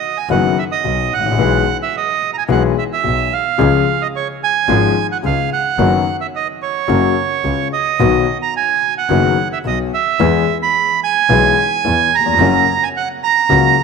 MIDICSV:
0, 0, Header, 1, 4, 480
1, 0, Start_track
1, 0, Key_signature, 5, "major"
1, 0, Tempo, 549954
1, 1218, Time_signature, 4, 2, 24, 8
1, 12074, End_track
2, 0, Start_track
2, 0, Title_t, "Bandoneon"
2, 0, Program_c, 0, 23
2, 0, Note_on_c, 0, 75, 64
2, 152, Note_on_c, 0, 80, 70
2, 156, Note_off_c, 0, 75, 0
2, 257, Note_off_c, 0, 80, 0
2, 270, Note_on_c, 0, 78, 62
2, 511, Note_off_c, 0, 78, 0
2, 511, Note_on_c, 0, 76, 64
2, 562, Note_off_c, 0, 76, 0
2, 624, Note_on_c, 0, 75, 66
2, 989, Note_on_c, 0, 78, 77
2, 992, Note_off_c, 0, 75, 0
2, 1548, Note_off_c, 0, 78, 0
2, 1595, Note_on_c, 0, 76, 66
2, 1709, Note_off_c, 0, 76, 0
2, 1719, Note_on_c, 0, 75, 70
2, 2015, Note_off_c, 0, 75, 0
2, 2039, Note_on_c, 0, 82, 55
2, 2062, Note_off_c, 0, 82, 0
2, 2077, Note_on_c, 0, 80, 78
2, 2126, Note_off_c, 0, 80, 0
2, 2193, Note_on_c, 0, 78, 70
2, 2297, Note_off_c, 0, 78, 0
2, 2429, Note_on_c, 0, 76, 66
2, 2479, Note_off_c, 0, 76, 0
2, 2558, Note_on_c, 0, 76, 74
2, 2908, Note_on_c, 0, 77, 68
2, 2914, Note_off_c, 0, 76, 0
2, 3506, Note_on_c, 0, 75, 62
2, 3516, Note_off_c, 0, 77, 0
2, 3557, Note_off_c, 0, 75, 0
2, 3630, Note_on_c, 0, 73, 66
2, 3733, Note_off_c, 0, 73, 0
2, 3872, Note_on_c, 0, 80, 86
2, 4424, Note_off_c, 0, 80, 0
2, 4468, Note_on_c, 0, 78, 71
2, 4518, Note_off_c, 0, 78, 0
2, 4588, Note_on_c, 0, 77, 81
2, 4801, Note_off_c, 0, 77, 0
2, 4827, Note_on_c, 0, 78, 79
2, 5383, Note_off_c, 0, 78, 0
2, 5419, Note_on_c, 0, 76, 68
2, 5470, Note_off_c, 0, 76, 0
2, 5548, Note_on_c, 0, 75, 71
2, 5652, Note_off_c, 0, 75, 0
2, 5780, Note_on_c, 0, 73, 75
2, 6706, Note_off_c, 0, 73, 0
2, 6746, Note_on_c, 0, 75, 69
2, 7312, Note_off_c, 0, 75, 0
2, 7350, Note_on_c, 0, 82, 77
2, 7458, Note_off_c, 0, 82, 0
2, 7477, Note_on_c, 0, 80, 84
2, 7806, Note_off_c, 0, 80, 0
2, 7837, Note_on_c, 0, 78, 79
2, 8278, Note_off_c, 0, 78, 0
2, 8315, Note_on_c, 0, 76, 71
2, 8367, Note_off_c, 0, 76, 0
2, 8439, Note_on_c, 0, 75, 73
2, 8544, Note_off_c, 0, 75, 0
2, 8676, Note_on_c, 0, 76, 77
2, 9234, Note_off_c, 0, 76, 0
2, 9274, Note_on_c, 0, 83, 88
2, 9603, Note_off_c, 0, 83, 0
2, 9633, Note_on_c, 0, 80, 103
2, 10605, Note_on_c, 0, 82, 88
2, 10612, Note_off_c, 0, 80, 0
2, 11201, Note_on_c, 0, 80, 79
2, 11208, Note_off_c, 0, 82, 0
2, 11249, Note_off_c, 0, 80, 0
2, 11319, Note_on_c, 0, 78, 86
2, 11421, Note_off_c, 0, 78, 0
2, 11553, Note_on_c, 0, 82, 98
2, 12074, Note_off_c, 0, 82, 0
2, 12074, End_track
3, 0, Start_track
3, 0, Title_t, "Grand piano"
3, 0, Program_c, 1, 0
3, 259, Note_on_c, 1, 51, 61
3, 261, Note_on_c, 1, 54, 58
3, 261, Note_on_c, 1, 59, 58
3, 262, Note_on_c, 1, 30, 69
3, 262, Note_on_c, 1, 42, 71
3, 265, Note_on_c, 1, 66, 71
3, 460, Note_off_c, 1, 51, 0
3, 461, Note_off_c, 1, 30, 0
3, 461, Note_off_c, 1, 42, 0
3, 461, Note_off_c, 1, 54, 0
3, 461, Note_off_c, 1, 59, 0
3, 462, Note_off_c, 1, 66, 0
3, 736, Note_on_c, 1, 47, 45
3, 737, Note_on_c, 1, 35, 46
3, 938, Note_off_c, 1, 47, 0
3, 939, Note_off_c, 1, 35, 0
3, 1039, Note_on_c, 1, 32, 38
3, 1095, Note_on_c, 1, 33, 56
3, 1098, Note_off_c, 1, 32, 0
3, 1146, Note_on_c, 1, 34, 64
3, 1156, Note_off_c, 1, 33, 0
3, 1208, Note_on_c, 1, 52, 62
3, 1210, Note_on_c, 1, 35, 73
3, 1210, Note_on_c, 1, 56, 58
3, 1212, Note_off_c, 1, 34, 0
3, 1213, Note_on_c, 1, 47, 70
3, 1214, Note_on_c, 1, 59, 64
3, 1214, Note_on_c, 1, 68, 67
3, 1414, Note_off_c, 1, 52, 0
3, 1415, Note_off_c, 1, 35, 0
3, 1415, Note_off_c, 1, 56, 0
3, 1417, Note_off_c, 1, 47, 0
3, 1417, Note_off_c, 1, 59, 0
3, 1417, Note_off_c, 1, 68, 0
3, 2168, Note_on_c, 1, 52, 69
3, 2169, Note_on_c, 1, 56, 59
3, 2170, Note_on_c, 1, 35, 75
3, 2172, Note_on_c, 1, 59, 60
3, 2174, Note_on_c, 1, 47, 84
3, 2175, Note_on_c, 1, 68, 79
3, 2373, Note_off_c, 1, 52, 0
3, 2373, Note_off_c, 1, 56, 0
3, 2374, Note_off_c, 1, 35, 0
3, 2374, Note_off_c, 1, 59, 0
3, 2375, Note_off_c, 1, 47, 0
3, 2376, Note_off_c, 1, 68, 0
3, 2650, Note_on_c, 1, 35, 42
3, 2650, Note_on_c, 1, 47, 45
3, 2852, Note_off_c, 1, 35, 0
3, 2852, Note_off_c, 1, 47, 0
3, 3124, Note_on_c, 1, 53, 61
3, 3125, Note_on_c, 1, 61, 60
3, 3126, Note_on_c, 1, 37, 78
3, 3126, Note_on_c, 1, 56, 59
3, 3128, Note_on_c, 1, 49, 76
3, 3128, Note_on_c, 1, 68, 78
3, 3329, Note_off_c, 1, 53, 0
3, 3329, Note_off_c, 1, 61, 0
3, 3330, Note_off_c, 1, 37, 0
3, 3330, Note_off_c, 1, 56, 0
3, 3331, Note_off_c, 1, 49, 0
3, 3331, Note_off_c, 1, 68, 0
3, 4088, Note_on_c, 1, 44, 80
3, 4089, Note_on_c, 1, 32, 77
3, 4089, Note_on_c, 1, 56, 56
3, 4090, Note_on_c, 1, 53, 74
3, 4091, Note_on_c, 1, 68, 76
3, 4092, Note_on_c, 1, 61, 55
3, 4290, Note_off_c, 1, 32, 0
3, 4290, Note_off_c, 1, 44, 0
3, 4290, Note_off_c, 1, 56, 0
3, 4291, Note_off_c, 1, 53, 0
3, 4291, Note_off_c, 1, 68, 0
3, 4292, Note_off_c, 1, 61, 0
3, 4560, Note_on_c, 1, 37, 43
3, 4561, Note_on_c, 1, 49, 40
3, 4765, Note_off_c, 1, 37, 0
3, 4766, Note_off_c, 1, 49, 0
3, 5045, Note_on_c, 1, 51, 60
3, 5047, Note_on_c, 1, 54, 80
3, 5048, Note_on_c, 1, 42, 76
3, 5048, Note_on_c, 1, 59, 59
3, 5049, Note_on_c, 1, 66, 73
3, 5248, Note_off_c, 1, 51, 0
3, 5249, Note_off_c, 1, 54, 0
3, 5250, Note_off_c, 1, 42, 0
3, 5250, Note_off_c, 1, 59, 0
3, 5250, Note_off_c, 1, 66, 0
3, 6003, Note_on_c, 1, 54, 81
3, 6004, Note_on_c, 1, 49, 59
3, 6006, Note_on_c, 1, 42, 67
3, 6007, Note_on_c, 1, 58, 57
3, 6009, Note_on_c, 1, 66, 62
3, 6210, Note_off_c, 1, 49, 0
3, 6211, Note_off_c, 1, 42, 0
3, 6211, Note_off_c, 1, 54, 0
3, 6211, Note_off_c, 1, 58, 0
3, 6212, Note_off_c, 1, 66, 0
3, 6490, Note_on_c, 1, 49, 42
3, 6492, Note_on_c, 1, 37, 45
3, 6695, Note_off_c, 1, 49, 0
3, 6696, Note_off_c, 1, 37, 0
3, 6977, Note_on_c, 1, 51, 61
3, 6978, Note_on_c, 1, 47, 69
3, 6979, Note_on_c, 1, 35, 72
3, 6979, Note_on_c, 1, 54, 59
3, 6979, Note_on_c, 1, 66, 68
3, 6983, Note_on_c, 1, 59, 51
3, 7181, Note_off_c, 1, 47, 0
3, 7181, Note_off_c, 1, 51, 0
3, 7182, Note_off_c, 1, 35, 0
3, 7182, Note_off_c, 1, 54, 0
3, 7182, Note_off_c, 1, 66, 0
3, 7184, Note_off_c, 1, 59, 0
3, 7940, Note_on_c, 1, 51, 64
3, 7943, Note_on_c, 1, 54, 58
3, 7944, Note_on_c, 1, 30, 75
3, 7944, Note_on_c, 1, 42, 76
3, 7944, Note_on_c, 1, 66, 73
3, 7946, Note_on_c, 1, 59, 59
3, 8143, Note_off_c, 1, 51, 0
3, 8145, Note_off_c, 1, 30, 0
3, 8145, Note_off_c, 1, 42, 0
3, 8145, Note_off_c, 1, 54, 0
3, 8145, Note_off_c, 1, 66, 0
3, 8146, Note_off_c, 1, 59, 0
3, 8421, Note_on_c, 1, 35, 40
3, 8421, Note_on_c, 1, 47, 42
3, 8624, Note_off_c, 1, 35, 0
3, 8625, Note_off_c, 1, 47, 0
3, 8898, Note_on_c, 1, 52, 73
3, 8900, Note_on_c, 1, 56, 64
3, 8901, Note_on_c, 1, 40, 78
3, 8902, Note_on_c, 1, 59, 60
3, 8906, Note_on_c, 1, 68, 71
3, 9102, Note_off_c, 1, 56, 0
3, 9103, Note_off_c, 1, 40, 0
3, 9103, Note_off_c, 1, 52, 0
3, 9104, Note_off_c, 1, 59, 0
3, 9105, Note_off_c, 1, 68, 0
3, 9856, Note_on_c, 1, 52, 69
3, 9858, Note_on_c, 1, 56, 62
3, 9858, Note_on_c, 1, 59, 59
3, 9859, Note_on_c, 1, 35, 69
3, 9859, Note_on_c, 1, 68, 72
3, 9861, Note_on_c, 1, 47, 75
3, 10059, Note_off_c, 1, 52, 0
3, 10060, Note_off_c, 1, 56, 0
3, 10061, Note_off_c, 1, 35, 0
3, 10061, Note_off_c, 1, 59, 0
3, 10061, Note_off_c, 1, 68, 0
3, 10062, Note_off_c, 1, 47, 0
3, 10340, Note_on_c, 1, 40, 48
3, 10340, Note_on_c, 1, 52, 47
3, 10540, Note_off_c, 1, 40, 0
3, 10541, Note_off_c, 1, 52, 0
3, 10639, Note_on_c, 1, 39, 37
3, 10698, Note_off_c, 1, 39, 0
3, 10699, Note_on_c, 1, 40, 59
3, 10758, Note_off_c, 1, 40, 0
3, 10764, Note_on_c, 1, 41, 72
3, 10821, Note_off_c, 1, 41, 0
3, 10821, Note_on_c, 1, 49, 65
3, 10821, Note_on_c, 1, 54, 81
3, 10822, Note_on_c, 1, 66, 73
3, 10823, Note_on_c, 1, 42, 88
3, 10823, Note_on_c, 1, 58, 65
3, 11020, Note_off_c, 1, 49, 0
3, 11021, Note_off_c, 1, 42, 0
3, 11021, Note_off_c, 1, 54, 0
3, 11021, Note_off_c, 1, 66, 0
3, 11022, Note_off_c, 1, 58, 0
3, 11777, Note_on_c, 1, 37, 80
3, 11779, Note_on_c, 1, 49, 77
3, 11780, Note_on_c, 1, 54, 56
3, 11780, Note_on_c, 1, 58, 56
3, 11783, Note_on_c, 1, 66, 76
3, 11977, Note_off_c, 1, 37, 0
3, 11978, Note_off_c, 1, 49, 0
3, 11978, Note_off_c, 1, 54, 0
3, 11978, Note_off_c, 1, 58, 0
3, 11980, Note_off_c, 1, 66, 0
3, 12074, End_track
4, 0, Start_track
4, 0, Title_t, "Double bass"
4, 0, Program_c, 2, 43
4, 255, Note_on_c, 2, 30, 63
4, 458, Note_off_c, 2, 30, 0
4, 738, Note_on_c, 2, 35, 46
4, 939, Note_off_c, 2, 35, 0
4, 981, Note_on_c, 2, 33, 44
4, 1211, Note_off_c, 2, 33, 0
4, 1216, Note_on_c, 2, 35, 77
4, 1418, Note_off_c, 2, 35, 0
4, 2173, Note_on_c, 2, 35, 73
4, 2375, Note_off_c, 2, 35, 0
4, 2652, Note_on_c, 2, 35, 48
4, 2853, Note_off_c, 2, 35, 0
4, 3131, Note_on_c, 2, 37, 86
4, 3332, Note_off_c, 2, 37, 0
4, 4089, Note_on_c, 2, 32, 83
4, 4290, Note_off_c, 2, 32, 0
4, 4572, Note_on_c, 2, 37, 52
4, 4771, Note_off_c, 2, 37, 0
4, 5042, Note_on_c, 2, 30, 82
4, 5247, Note_off_c, 2, 30, 0
4, 6009, Note_on_c, 2, 30, 73
4, 6212, Note_off_c, 2, 30, 0
4, 6493, Note_on_c, 2, 37, 43
4, 6696, Note_off_c, 2, 37, 0
4, 6976, Note_on_c, 2, 35, 79
4, 7181, Note_off_c, 2, 35, 0
4, 7938, Note_on_c, 2, 30, 74
4, 8142, Note_off_c, 2, 30, 0
4, 8419, Note_on_c, 2, 35, 49
4, 8623, Note_off_c, 2, 35, 0
4, 8900, Note_on_c, 2, 40, 79
4, 9102, Note_off_c, 2, 40, 0
4, 9856, Note_on_c, 2, 35, 77
4, 10059, Note_off_c, 2, 35, 0
4, 10339, Note_on_c, 2, 40, 53
4, 10540, Note_off_c, 2, 40, 0
4, 10810, Note_on_c, 2, 30, 82
4, 11015, Note_off_c, 2, 30, 0
4, 11773, Note_on_c, 2, 37, 68
4, 11975, Note_off_c, 2, 37, 0
4, 12074, End_track
0, 0, End_of_file